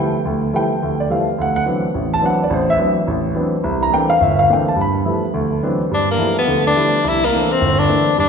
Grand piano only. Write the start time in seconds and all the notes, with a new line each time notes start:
Already playing: F3 G3 A3 B3 E4
0.25 D2
0.53 F3 G3 A3 B3 E4 G5
0.83 D2
1.00 D5
1.10 F3 G3 A3 B3 E4 F5
1.38 D2 F#5
1.56 F#5
1.66 E3 F#3 B3 C4 D4
1.94 A1
2.14 A5
2.21 E3 F#3 B3 C4 D4
2.26 F#5
2.44 D5
2.50 A1 C5
2.70 E5
2.79 E3 F#3 B3 C4 D4
3.07 A1
3.35 E3 F#3 B3 C4 D4
3.64 C2
3.83 A#5
3.92 E3 A3 A#3 C4 D4 G5
4.10 F5
4.21 G1 E5
4.39 F5
4.49 E3 A3 A#3 C4 D4 G5
4.68 A5
4.76 G2
4.81 B5
5.05 F3 G3 A3 B3 E4
5.34 D2
5.63 E3 F#3 B3 C4 D4
5.91 G2
6.18 F3 G3 A3 B3 E4
6.47 D2 D3
6.76 F3 G3 A3 B3 E4
7.04 C2
7.33 E3 A3 A#3 C4 D4
7.61 G1
7.89 E3 A3 A#3 C4 D4
8.18 G2